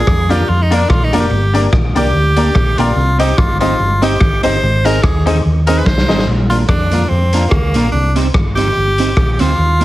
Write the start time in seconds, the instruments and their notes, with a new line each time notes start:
Already playing: tenor saxophone G#4
0.07 fingered electric bass F2, kick, cross-stick
0.29 clean electric guitar A#3 D4 F4 A#4, upright piano D4 F4 A#4 D5, tenor saxophone G4, closed hi-hat
0.49 fingered electric bass F2, tenor saxophone F4
0.62 tenor saxophone D#4
0.70 clean electric guitar A#3 D4 F4 A#4, upright piano D4 F4 A#4 D5, closed hi-hat
0.76 tenor saxophone D4
0.89 fingered electric bass A#1, tenor saxophone F4, kick, cross-stick
1.04 tenor saxophone D#4
1.12 fingered electric bass F1, clean electric guitar A#3 D4 F4 A#4, upright piano D4 F4 A#4 D5, closed hi-hat
1.20 tenor saxophone G4
1.30 fingered electric bass G1
1.54 clean electric guitar A#3 D4 G4 A#4, upright piano D4 G4 A#4 D5, closed hi-hat
1.73 fingered electric bass A#1, kick, cross-stick
1.95 fingered electric bass C2, clean electric guitar A#3 D4 G4 A#4, upright piano D4 G4 A#4 D5, tenor saxophone G4, closed hi-hat
2.13 fingered electric bass D2
2.36 clean electric guitar A#3 D4 G4 A#4, upright piano D4 G4 A#4 D5, closed hi-hat
2.55 fingered electric bass A#1, kick, cross-stick
2.78 fingered electric bass A#1, clean electric guitar A#3 D4 G4 A#4, upright piano D4 G4 A#4 D5, tenor saxophone F4, closed hi-hat
2.96 fingered electric bass C2
3.19 clean electric guitar C4 D#4 G4 C5, upright piano D#4 G4 C5 D#5, tenor saxophone G4, closed hi-hat
3.38 fingered electric bass G1, tenor saxophone F4, kick, cross-stick
3.61 clean electric guitar C4 D#4 G4 C5, upright piano D#4 G4 C5 D#5, tenor saxophone F4, closed hi-hat
3.80 fingered electric bass G1
4.02 clean electric guitar C4 D#4 G4 C5, upright piano D#4 G4 C5 D#5, tenor saxophone G4, closed hi-hat
4.21 fingered electric bass G#1, kick, cross-stick
4.43 fingered electric bass G1, clean electric guitar C4 D#4 G4 C5, upright piano D#4 G4 C5 D#5, tenor saxophone C5, closed hi-hat
4.63 fingered electric bass G#1
4.85 clean electric guitar C4 D#4 G#4 C5, upright piano D#4 G#4 C5 D#5, tenor saxophone A#4, closed hi-hat
5.02 fingered electric bass D#2, tenor saxophone G#4, kick, cross-stick
5.26 clean electric guitar C4 D#4 G#4 C5, upright piano D#4 G#4 C5 D#5, closed hi-hat
5.45 fingered electric bass D#2
5.67 clean electric guitar C4 D#4 G#4 C5, upright piano D#4 G#4 C5 D#5, tenor saxophone A#4, closed hi-hat
5.78 tenor saxophone B4
5.86 fingered electric bass C2, tenor saxophone C5, kick, snare
5.98 snare
6.08 fingered electric bass G#1, clean electric guitar C4 D#4 G#4 C5, upright piano D#4 G#4 C5 D#5, snare
6.19 snare
6.27 fingered electric bass A#1
6.50 clean electric guitar A#3 D4 F4 A#4, tenor saxophone F4, closed hi-hat
6.69 fingered electric bass F2, tenor saxophone D4, kick, cross-stick
6.91 clean electric guitar A#3 D4 F4 A#4, closed hi-hat
7.09 fingered electric bass F2, tenor saxophone C4
7.33 clean electric guitar A#3 D4 F4 A#4, closed hi-hat
7.45 tenor saxophone A#3 C4
7.51 fingered electric bass D2, kick, cross-stick
7.74 fingered electric bass A#1, clean electric guitar A#3 D4 F4 A#4, closed hi-hat
7.92 fingered electric bass C2, tenor saxophone D4
8.15 clean electric guitar C4 D#4 G4 C5, closed hi-hat
8.34 fingered electric bass G1, kick, cross-stick
8.55 clean electric guitar C4 D#4 G4 C5, tenor saxophone G4, closed hi-hat
8.77 fingered electric bass G1
8.98 clean electric guitar C4 D#4 G4 C5, closed hi-hat
9.17 fingered electric bass A#1, kick, cross-stick
9.31 tenor saxophone G4
9.39 fingered electric bass D2, clean electric guitar C4 D#4 G4 C5, tenor saxophone F4, closed hi-hat
9.58 fingered electric bass D#2
9.80 clean electric guitar A#3 D#4 G4 A#4, closed hi-hat